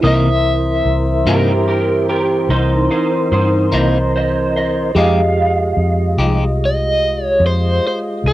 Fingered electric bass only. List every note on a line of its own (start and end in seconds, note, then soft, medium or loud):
0.04 0.82 C2 medium
0.85 1.23 C2 medium
1.26 2.45 G2 medium
2.49 2.87 C2 loud
3.31 3.69 G2 medium
3.73 4.92 C2 medium
4.95 5.73 F2 medium
5.77 6.15 F2 medium
6.18 7.37 C2 medium
7.40 7.78 F2 loud
8.24 8.33 C2 medium